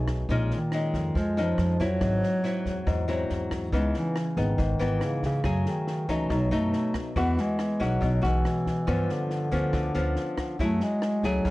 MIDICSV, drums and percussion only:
0, 0, Header, 1, 2, 480
1, 0, Start_track
1, 0, Tempo, 429492
1, 321, Time_signature, 4, 2, 24, 8
1, 12858, End_track
2, 0, Start_track
2, 0, Title_t, "Drums"
2, 84, Note_on_c, 9, 36, 23
2, 85, Note_on_c, 9, 37, 59
2, 85, Note_on_c, 9, 38, 23
2, 195, Note_off_c, 9, 36, 0
2, 196, Note_off_c, 9, 37, 0
2, 196, Note_off_c, 9, 38, 0
2, 322, Note_on_c, 9, 38, 23
2, 323, Note_on_c, 9, 36, 55
2, 434, Note_off_c, 9, 38, 0
2, 435, Note_off_c, 9, 36, 0
2, 568, Note_on_c, 9, 38, 21
2, 680, Note_off_c, 9, 38, 0
2, 803, Note_on_c, 9, 37, 54
2, 803, Note_on_c, 9, 38, 23
2, 915, Note_off_c, 9, 37, 0
2, 915, Note_off_c, 9, 38, 0
2, 1047, Note_on_c, 9, 36, 22
2, 1051, Note_on_c, 9, 38, 22
2, 1158, Note_off_c, 9, 36, 0
2, 1162, Note_off_c, 9, 38, 0
2, 1288, Note_on_c, 9, 36, 53
2, 1294, Note_on_c, 9, 38, 22
2, 1400, Note_off_c, 9, 36, 0
2, 1406, Note_off_c, 9, 38, 0
2, 1533, Note_on_c, 9, 38, 22
2, 1645, Note_off_c, 9, 38, 0
2, 1767, Note_on_c, 9, 37, 49
2, 1767, Note_on_c, 9, 38, 22
2, 1878, Note_off_c, 9, 37, 0
2, 1878, Note_off_c, 9, 38, 0
2, 2009, Note_on_c, 9, 36, 22
2, 2012, Note_on_c, 9, 38, 24
2, 2121, Note_off_c, 9, 36, 0
2, 2124, Note_off_c, 9, 38, 0
2, 2247, Note_on_c, 9, 37, 59
2, 2247, Note_on_c, 9, 38, 24
2, 2248, Note_on_c, 9, 36, 56
2, 2359, Note_off_c, 9, 36, 0
2, 2359, Note_off_c, 9, 37, 0
2, 2359, Note_off_c, 9, 38, 0
2, 2495, Note_on_c, 9, 38, 22
2, 2607, Note_off_c, 9, 38, 0
2, 2734, Note_on_c, 9, 38, 24
2, 2846, Note_off_c, 9, 38, 0
2, 2968, Note_on_c, 9, 36, 21
2, 2970, Note_on_c, 9, 38, 22
2, 3080, Note_off_c, 9, 36, 0
2, 3082, Note_off_c, 9, 38, 0
2, 3207, Note_on_c, 9, 36, 48
2, 3209, Note_on_c, 9, 37, 50
2, 3209, Note_on_c, 9, 38, 20
2, 3319, Note_off_c, 9, 36, 0
2, 3320, Note_off_c, 9, 37, 0
2, 3320, Note_off_c, 9, 38, 0
2, 3446, Note_on_c, 9, 38, 20
2, 3557, Note_off_c, 9, 38, 0
2, 3685, Note_on_c, 9, 38, 21
2, 3797, Note_off_c, 9, 38, 0
2, 3925, Note_on_c, 9, 36, 24
2, 3925, Note_on_c, 9, 37, 59
2, 3925, Note_on_c, 9, 38, 22
2, 4037, Note_off_c, 9, 36, 0
2, 4037, Note_off_c, 9, 37, 0
2, 4037, Note_off_c, 9, 38, 0
2, 4162, Note_on_c, 9, 38, 22
2, 4163, Note_on_c, 9, 36, 54
2, 4273, Note_off_c, 9, 38, 0
2, 4275, Note_off_c, 9, 36, 0
2, 4403, Note_on_c, 9, 38, 22
2, 4514, Note_off_c, 9, 38, 0
2, 4645, Note_on_c, 9, 37, 56
2, 4645, Note_on_c, 9, 38, 23
2, 4757, Note_off_c, 9, 37, 0
2, 4757, Note_off_c, 9, 38, 0
2, 4881, Note_on_c, 9, 38, 21
2, 4883, Note_on_c, 9, 36, 23
2, 4993, Note_off_c, 9, 38, 0
2, 4995, Note_off_c, 9, 36, 0
2, 5122, Note_on_c, 9, 38, 22
2, 5123, Note_on_c, 9, 36, 55
2, 5233, Note_off_c, 9, 38, 0
2, 5235, Note_off_c, 9, 36, 0
2, 5362, Note_on_c, 9, 38, 24
2, 5474, Note_off_c, 9, 38, 0
2, 5600, Note_on_c, 9, 37, 55
2, 5600, Note_on_c, 9, 38, 21
2, 5712, Note_off_c, 9, 37, 0
2, 5712, Note_off_c, 9, 38, 0
2, 5841, Note_on_c, 9, 36, 25
2, 5844, Note_on_c, 9, 38, 25
2, 5953, Note_off_c, 9, 36, 0
2, 5956, Note_off_c, 9, 38, 0
2, 6079, Note_on_c, 9, 37, 59
2, 6079, Note_on_c, 9, 38, 22
2, 6080, Note_on_c, 9, 36, 61
2, 6190, Note_off_c, 9, 37, 0
2, 6190, Note_off_c, 9, 38, 0
2, 6192, Note_off_c, 9, 36, 0
2, 6323, Note_on_c, 9, 38, 21
2, 6435, Note_off_c, 9, 38, 0
2, 6564, Note_on_c, 9, 38, 26
2, 6675, Note_off_c, 9, 38, 0
2, 6802, Note_on_c, 9, 36, 24
2, 6805, Note_on_c, 9, 38, 22
2, 6914, Note_off_c, 9, 36, 0
2, 6917, Note_off_c, 9, 38, 0
2, 7042, Note_on_c, 9, 36, 47
2, 7045, Note_on_c, 9, 37, 53
2, 7045, Note_on_c, 9, 38, 22
2, 7154, Note_off_c, 9, 36, 0
2, 7157, Note_off_c, 9, 37, 0
2, 7157, Note_off_c, 9, 38, 0
2, 7284, Note_on_c, 9, 38, 23
2, 7396, Note_off_c, 9, 38, 0
2, 7521, Note_on_c, 9, 38, 22
2, 7633, Note_off_c, 9, 38, 0
2, 7759, Note_on_c, 9, 36, 25
2, 7759, Note_on_c, 9, 37, 62
2, 7759, Note_on_c, 9, 38, 24
2, 7870, Note_off_c, 9, 37, 0
2, 7870, Note_off_c, 9, 38, 0
2, 7871, Note_off_c, 9, 36, 0
2, 8001, Note_on_c, 9, 36, 60
2, 8002, Note_on_c, 9, 38, 22
2, 8113, Note_off_c, 9, 36, 0
2, 8114, Note_off_c, 9, 38, 0
2, 8243, Note_on_c, 9, 38, 22
2, 8355, Note_off_c, 9, 38, 0
2, 8482, Note_on_c, 9, 37, 58
2, 8482, Note_on_c, 9, 38, 26
2, 8594, Note_off_c, 9, 37, 0
2, 8594, Note_off_c, 9, 38, 0
2, 8724, Note_on_c, 9, 36, 23
2, 8730, Note_on_c, 9, 38, 22
2, 8835, Note_off_c, 9, 36, 0
2, 8841, Note_off_c, 9, 38, 0
2, 8958, Note_on_c, 9, 38, 21
2, 8962, Note_on_c, 9, 36, 52
2, 9070, Note_off_c, 9, 38, 0
2, 9073, Note_off_c, 9, 36, 0
2, 9206, Note_on_c, 9, 38, 23
2, 9318, Note_off_c, 9, 38, 0
2, 9445, Note_on_c, 9, 37, 53
2, 9445, Note_on_c, 9, 38, 19
2, 9557, Note_off_c, 9, 37, 0
2, 9557, Note_off_c, 9, 38, 0
2, 9683, Note_on_c, 9, 36, 25
2, 9685, Note_on_c, 9, 38, 25
2, 9795, Note_off_c, 9, 36, 0
2, 9797, Note_off_c, 9, 38, 0
2, 9922, Note_on_c, 9, 36, 58
2, 9922, Note_on_c, 9, 37, 60
2, 9922, Note_on_c, 9, 38, 25
2, 10034, Note_off_c, 9, 36, 0
2, 10034, Note_off_c, 9, 37, 0
2, 10034, Note_off_c, 9, 38, 0
2, 10165, Note_on_c, 9, 38, 24
2, 10276, Note_off_c, 9, 38, 0
2, 10397, Note_on_c, 9, 38, 24
2, 10509, Note_off_c, 9, 38, 0
2, 10638, Note_on_c, 9, 38, 24
2, 10639, Note_on_c, 9, 36, 20
2, 10749, Note_off_c, 9, 38, 0
2, 10751, Note_off_c, 9, 36, 0
2, 10875, Note_on_c, 9, 37, 53
2, 10875, Note_on_c, 9, 38, 19
2, 10878, Note_on_c, 9, 36, 52
2, 10987, Note_off_c, 9, 37, 0
2, 10987, Note_off_c, 9, 38, 0
2, 10990, Note_off_c, 9, 36, 0
2, 11114, Note_on_c, 9, 38, 22
2, 11226, Note_off_c, 9, 38, 0
2, 11353, Note_on_c, 9, 38, 22
2, 11465, Note_off_c, 9, 38, 0
2, 11596, Note_on_c, 9, 37, 60
2, 11596, Note_on_c, 9, 38, 27
2, 11597, Note_on_c, 9, 36, 26
2, 11708, Note_off_c, 9, 37, 0
2, 11708, Note_off_c, 9, 38, 0
2, 11709, Note_off_c, 9, 36, 0
2, 11838, Note_on_c, 9, 38, 23
2, 11839, Note_on_c, 9, 36, 52
2, 11949, Note_off_c, 9, 38, 0
2, 11951, Note_off_c, 9, 36, 0
2, 12075, Note_on_c, 9, 38, 23
2, 12187, Note_off_c, 9, 38, 0
2, 12315, Note_on_c, 9, 37, 59
2, 12315, Note_on_c, 9, 38, 23
2, 12427, Note_off_c, 9, 37, 0
2, 12427, Note_off_c, 9, 38, 0
2, 12557, Note_on_c, 9, 36, 23
2, 12558, Note_on_c, 9, 38, 23
2, 12669, Note_off_c, 9, 36, 0
2, 12670, Note_off_c, 9, 38, 0
2, 12791, Note_on_c, 9, 38, 23
2, 12795, Note_on_c, 9, 36, 53
2, 12858, Note_off_c, 9, 36, 0
2, 12858, Note_off_c, 9, 38, 0
2, 12858, End_track
0, 0, End_of_file